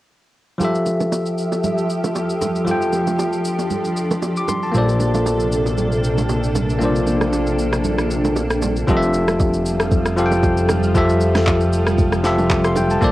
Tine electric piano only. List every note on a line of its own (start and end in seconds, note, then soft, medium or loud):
0.58 2.62 F3 medium
0.58 2.63 F4 medium
0.58 2.64 G4 medium
0.63 2.65 A4 medium
0.63 2.65 E5 medium
2.65 4.43 F3 medium
2.65 4.44 F4 medium
2.65 4.45 G4 medium
2.70 4.46 A4 medium
2.70 4.47 G5 medium
4.37 4.48 D6 medium
4.49 4.62 C6 medium
4.63 4.87 A5 medium
4.72 6.76 A#3 medium
4.72 6.77 F4 medium
4.72 6.77 A4 medium
4.77 6.78 C5 medium
4.77 6.79 D5 medium
6.79 8.83 A#3 medium
6.79 8.84 F4 medium
6.79 8.84 A4 medium
6.84 8.85 C5 medium
6.84 8.86 D5 medium
8.87 9.71 F3 medium
8.87 9.71 F4 medium
8.87 9.72 G4 medium
8.87 9.72 A4 medium
8.87 8.96 D#5 medium
8.97 9.76 E5 loud
10.17 10.80 F3 medium
10.17 10.80 F4 medium
10.17 10.81 G4 medium
10.17 10.81 A4 medium
10.17 10.25 F5 medium
10.26 10.85 G5 medium
10.94 11.78 F3 medium
10.94 11.78 F4 medium
10.94 11.79 G4 medium
10.94 11.79 A4 medium
10.94 11.79 E5 medium
12.23 12.87 F3 medium
12.23 12.87 F4 medium
12.23 12.88 G4 medium
12.23 12.88 A4 medium
12.23 12.89 E5 medium
12.65 12.76 C6 medium
12.77 12.90 G5 medium
12.91 13.12 A5 medium
13.01 13.12 A#3 medium
13.01 13.12 F4 medium
13.01 13.12 A4 medium
13.01 13.12 C5 medium
13.01 13.12 D5 loud